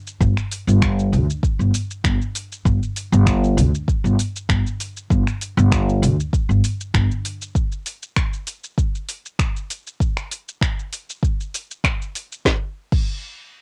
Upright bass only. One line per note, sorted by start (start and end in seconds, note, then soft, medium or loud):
0.21 0.32 G1 loud
0.67 1.14 G1 loud
1.12 1.24 D2 medium
1.59 1.70 G1 medium
2.04 2.16 G1 medium
2.65 2.77 G1 loud
3.12 3.58 G1 loud
3.57 3.69 D2 medium
4.04 4.15 G1 medium
4.49 4.61 G1 medium
5.10 5.22 G1 medium
5.57 6.04 G1 loud
6.02 6.14 D2 loud
6.49 6.60 G1 loud
6.94 7.06 G1 medium